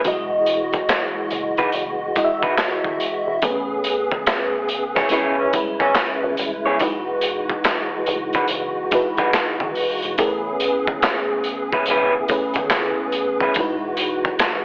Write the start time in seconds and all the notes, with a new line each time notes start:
0.04 E1 E3 F#3 G#3 E4 F#4 D#5, kick, closed hi-hat
0.12 G#3
0.46 closed hi-hat
0.72 kick, closed hi-hat
0.89 snare, clap, closed hi-hat
1.31 F#1, closed hi-hat
1.57 G#3 D#4 F#4 B4, kick, closed hi-hat
1.72 F#1, closed hi-hat
2.15 G#3 E4 F#4 D#5, kick, closed hi-hat
2.24 E5
2.43 E1 G#3 D#4 F#4 B4, kick
2.57 G#1, snare, clap, closed hi-hat
2.84 G#1, kick
3.00 closed hi-hat
3.27 E1
3.42 A1 C#3 A3 B3 G#4 B4, kick, closed hi-hat
3.50 C#4
3.84 closed hi-hat
4.12 G#1, kick
4.26 snare, clap, closed hi-hat
4.69 closed hi-hat
4.95 B3 E4 G#4 C#5, kick, snare
5.09 E1 C#3 G#3 B3 C#4 E4 G#4 B4 C#5, closed hi-hat
5.38 G#2 E3 C#4
5.53 G#1 G3 C#4 E4 B4, kick, closed hi-hat
5.60 G#3
5.80 G#1 G#2 E3 C#4, kick
5.95 snare, clap, closed hi-hat
6.23 G#1
6.37 A1, closed hi-hat
6.66 B1 B3 E4 G#4 C#5
6.79 E1 E3 F#3 G#3 D#4 E4 F#4 B4, kick, closed hi-hat
6.87 G#3
7.21 closed hi-hat
7.50 kick
7.64 snare, clap, closed hi-hat
8.06 F#1, closed hi-hat
8.33 G#3 D#4 F#4 B4, kick, closed hi-hat
8.48 F#1, closed hi-hat
8.91 G#3 D#4 E4 F#4 B4, kick, closed hi-hat
9.17 E1 G#3 D#4 F#4 B4, kick, closed hi-hat
9.34 G#1, snare, clap, closed hi-hat
9.60 G#1, kick
9.75 open hi-hat
10.02 E1, closed hi-hat
10.18 A1 C#3 A3 B3 C#4 E4 G#4 A#4, kick, closed hi-hat
10.27 B4
10.60 closed hi-hat
10.87 G#1, kick
11.02 snare, clap, closed hi-hat
11.44 closed hi-hat
11.73 G#3 C#4 E4 B4, kick
11.86 E1 G#3, closed hi-hat
11.90 C#4 E4 B4
12.28 A3 C#4 E4 G#4 B4, kick, closed hi-hat
12.54 G#1, kick, closed hi-hat
12.70 snare, clap, closed hi-hat
13.12 closed hi-hat
13.40 G#3 C#4 E4 B4, kick
13.54 E1 E3 G#3 D#4 F#4, kick, closed hi-hat
13.58 E4 F#4 B4
13.97 closed hi-hat
14.25 kick
14.39 snare, clap, closed hi-hat